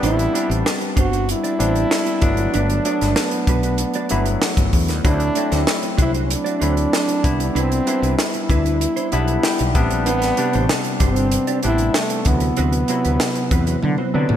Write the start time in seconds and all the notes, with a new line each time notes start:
Already playing: G3 B3 C4 D4 B4
0.03 A1 D4 E4 G4 C5, closed hi-hat
0.19 muted clean electric guitar stroke, closed hi-hat
0.33 G3 B3 C4 D4 G4 D5, closed hi-hat
0.50 A1 D4 G4 C5, closed hi-hat
0.65 muted clean electric guitar stroke, snare
0.81 muted clean electric guitar stroke, closed hi-hat
0.96 G1 D4 G4 C5, kick, closed hi-hat
1.01 F#4
1.12 D4 G4 C5, closed hi-hat
1.29 E4, muted clean electric guitar stroke, closed hi-hat
1.44 D4 G4 D5, closed hi-hat
1.59 A1 G3 B3 C4 D4 G4 C5, closed hi-hat
1.75 muted clean electric guitar stroke, closed hi-hat
1.91 muted clean electric guitar stroke, snare
2.06 muted clean electric guitar stroke, closed hi-hat
2.21 G1 F#3 A3 B3 D4, kick, closed hi-hat
2.37 muted clean electric guitar stroke, closed hi-hat
2.54 G1 D4 F#4 B4, closed hi-hat
2.70 closed hi-hat
2.84 F#3 A3 B3 D4 F#4 D5, closed hi-hat
3.01 G1 D4 F#4 B4, snare, closed hi-hat
3.16 muted clean electric guitar stroke, snare
3.20 B3
3.31 muted clean electric guitar stroke, closed hi-hat
3.47 B1 D4 F#4 B4, kick, closed hi-hat
3.63 D4 F#4 B4, closed hi-hat
3.78 muted clean electric guitar stroke, closed hi-hat
3.94 D4 F#4 D5, closed hi-hat
4.09 G1 F#3 A3 B3 D4 E4 F#4 B4, closed hi-hat
4.26 muted clean electric guitar stroke, closed hi-hat
4.42 muted clean electric guitar stroke, snare
4.57 G1, muted clean electric guitar stroke, kick, closed hi-hat
4.73 E2, kick, open hi-hat
4.88 D#2, muted clean electric guitar stroke, snare, closed hi-hat
5.04 D2 F#3 A3 C4 D4 E4 F#4 C5, kick, closed hi-hat
5.20 muted clean electric guitar stroke, closed hi-hat
5.35 F#3 A3 C4 D4 E4 F#4 D5, closed hi-hat
5.51 D2 D4 F#4 C5, snare, closed hi-hat
5.67 snare
5.82 muted clean electric guitar stroke, closed hi-hat
5.97 C2 D4 F#4 C5, kick, closed hi-hat
6.02 E4
6.13 D4 F#4 C5, closed hi-hat
6.23 C#4
6.29 muted clean electric guitar stroke, closed hi-hat
6.33 D4
6.44 D4 F#4 D5, closed hi-hat
6.60 D2 F#3 A3 C4 D4 E4 F#4 C5, closed hi-hat
6.76 muted clean electric guitar stroke, closed hi-hat
6.93 muted clean electric guitar stroke, snare
7.08 muted clean electric guitar stroke, closed hi-hat
7.23 C2 G3 B3 D4 E4, kick, closed hi-hat
7.40 muted clean electric guitar stroke, closed hi-hat
7.50 D4
7.55 C2 C4 D4 E4 B4, closed hi-hat
7.72 muted clean electric guitar stroke, closed hi-hat
7.86 G3 D4 E4 B4 C5, closed hi-hat
8.02 C2 D4 E4 B4, closed hi-hat
8.18 E4, snare
8.34 muted clean electric guitar stroke, closed hi-hat
8.49 D2 D4 E4 B4, kick, closed hi-hat
8.65 D4 E4 B4, closed hi-hat
8.81 muted clean electric guitar stroke, closed hi-hat
8.96 D4 E4 C5, closed hi-hat
9.12 B1 G3 B3 D4 E4 B4 B5, closed hi-hat
9.28 muted clean electric guitar stroke, closed hi-hat
9.43 G5, muted clean electric guitar stroke, snare
9.59 B1, muted clean electric guitar stroke, closed hi-hat
9.75 A1 G3 B3 C4 D4 E5, kick, closed hi-hat
9.90 A#1, muted clean electric guitar stroke, closed hi-hat
10.06 A1 B3 D4 G4 C5, closed hi-hat
10.22 muted clean electric guitar stroke, snare, closed hi-hat
10.37 C3 G3 D4 G4 B4 D5, closed hi-hat
10.53 A1 D4 G4 C5, closed hi-hat
10.69 snare
10.84 muted clean electric guitar stroke, closed hi-hat
11.00 G1 C4 D4 G4 C5, kick, closed hi-hat
11.16 D4 G4 C5, closed hi-hat
11.32 muted clean electric guitar stroke, closed hi-hat
11.47 D4 G4 D5, closed hi-hat
11.63 A1 G3 B3 C4 D4 E4 G4 C5, closed hi-hat
11.78 muted clean electric guitar stroke, closed hi-hat
11.94 A3, muted clean electric guitar stroke, snare
12.10 muted clean electric guitar stroke, closed hi-hat
12.25 D2 C3 F#3 B3 E4, kick, closed hi-hat
12.40 muted clean electric guitar stroke, closed hi-hat
12.57 D2 C4 F#4 B4, closed hi-hat
12.73 muted clean electric guitar stroke, closed hi-hat
12.88 C3 F#3 B3 C4 E4 F#4 C5, closed hi-hat
13.05 D2 C4 F#4 B4, closed hi-hat
13.20 snare
13.35 muted clean electric guitar stroke, closed hi-hat
13.51 E2 C4 F#4 B4, kick, closed hi-hat
13.67 C4 F#4 B4, closed hi-hat
13.82 D3, muted clean electric guitar stroke, high tom
13.98 C4 F#4 C5, high tom
14.14 C3 D3 F#3 B3 C4 D4 F#4 B4
14.29 A2, muted clean electric guitar stroke, mid tom